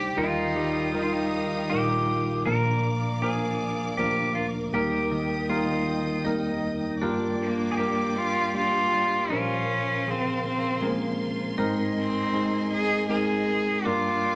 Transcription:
Already playing: C2 D2 C3 G3 D4 D#4 F4 G4 C5 D5 G5 D6
0.15 D#2 D#3 G3 D#4 F4 A#4 F5 D#6
0.22 D#4
0.56 G3
0.94 D#3 G3 D#4 F4 A#4
1.03 F4
1.13 D#4
1.70 A#1 F3 G3 D#4 F4 G4 A#4
2.43 A#1 A#2 F3 A#3 D4 A#4 D5 F5 D6
2.47 A#4
3.22 F3 A#3 D4 G#4 A#4
3.97 D2 F3 A#3 D4 G4 A#4
4.35 F4
4.73 D#2 D#3 G3 A#3 D#4 G4 A#4 D#5 G5 D#6
5.11 D#3
5.49 G3 A#3 D#4 F4 A#4
6.25 F2 G3 A#3 D#4 A#4
6.99 G1 G2 F3 G3 A#3 D4 A#4 D5 G5 D6
7.42 A#3
7.72 G#4
7.77 G3 A#3 D4 G4 A#4
8.18 F4
8.54 G3 A#3 D4 F4 G4
8.93 G3
9.28 A#1 A#2 F3 C#4 F4 A#4 C5 F5 C6
9.34 C#4
10.07 C#3 F3 C4 G#4
10.48 C4
10.82 F3 G#3 C4 C#4 A#4
10.87 A#3
11.58 G#1 G#2 G#3 C4 D#4 A#4 D#5 G#5
11.98 C4
12.33 G#3 C4 D#4 G#4
12.73 G#4
13.09 G#3 C4 D#4 G#4 A#4
13.85 G1 G2 G3 A#3 D4 F4 A#4 D5 G5 D6

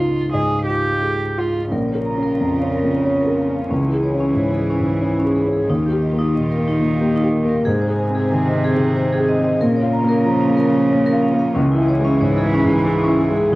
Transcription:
Already playing: C#2 F4 F5
0.00 D#4
0.33 G#2 G#4 D#5
0.66 F4 G4
1.02 G#3
1.37 F4
1.72 A#1 C#3 C#4 F4 A#4
1.88 C#5
1.95 A#4
2.05 A#5
2.17 C#4
2.23 A#4
2.39 F2 A#5
2.55 F5
2.62 C#4
2.72 A#4
2.83 F2
3.05 C#4 C#5
3.21 A#4
3.27 A#4
3.38 F5
3.49 C#4
3.54 F5
3.71 C#2 E3 C#4 E4 G#4
3.87 E4
3.92 G#4
4.03 C#5
4.14 C#4
4.20 C#4
4.35 G#2 C#5
4.54 G#4
4.58 C#4
4.70 C#4
4.80 G#2
5.01 C#4 E4
5.19 C#4
5.24 G#4
5.36 G#4
5.47 C#4
5.53 G#4
5.68 D#2 D#3 A#3 D#4 F4 G4
5.86 G4
5.91 G4
6.02 D#5
6.13 A#3
6.19 D#4
6.35 A#2 D#5
6.51 A#4
6.58 A#3
6.68 D#4
6.79 A#2
7.00 A#3 G4
7.16 D#4
7.23 G4
7.33 A#4
7.45 A#3 A#4
7.65 G#2 C3 C4 D#4 G#4
7.82 C5
7.88 G#4
7.99 G#5
8.10 C4
8.15 G#4
8.32 D#3 G#5
8.48 D#5
8.54 C4
8.64 G#4
8.76 D#3
8.96 C4 C5
9.13 G#4
9.18 G#4
9.29 D#5
9.40 C4
9.44 D#5
9.61 A#2 C#3 C#4 F4 A#4
9.76 C#5
9.82 F4
9.93 A#5
10.04 A#3
10.09 A#4
10.25 F3 A#5
10.41 F5
10.48 A#3
10.57 A#4
10.69 F3
10.90 A#3 C#5
11.06 A#4
11.13 F4
11.22 F5
11.34 A#3
11.39 F5
11.55 C#2 E3 C#4 E4 G#4
11.72 E4
11.77 E4
11.88 C#5
11.99 G#3
12.05 C#4
12.21 G#2 C#5
12.38 G#4
12.43 G#3
12.54 C#4
12.64 G#2
12.86 G#3 E4
13.04 C#4
13.08 E4
13.20 G#4
13.30 G#3
13.37 G#4
13.52 D#2

